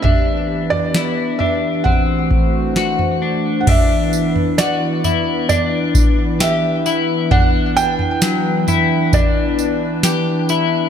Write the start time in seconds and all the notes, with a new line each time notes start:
Already playing: D4 G4
0.02 E3 B3 D4 B4 E5, kick, floor tom
0.70 D5, floor tom
0.94 E4, snare
1.39 D4 E5, floor tom
1.84 E3 A3 C4 F#4 C5 F#5, kick, floor tom
2.31 kick
2.76 F#4, snare
2.99 floor tom
3.22 D4
3.61 F#5
3.67 E3 B3 D4 E4 B4 E5, kick, floor tom, crash
4.13 tambourine
4.36 floor tom
4.58 F#4 D5, snare, tambourine
5.04 E4, floor tom, tambourine
5.49 D4 D5, floor tom, tambourine
5.95 kick, tambourine
6.40 G4 E5, snare, tambourine
6.86 E4, tambourine
7.31 D4 F#5, kick, floor tom
7.77 G5, tambourine
7.99 floor tom
8.22 F#3, snare, tambourine
8.68 E4, floor tom, tambourine
9.13 D4 D5, kick, floor tom, tambourine
9.59 tambourine
10.03 G4, snare, tambourine
10.49 E4, tambourine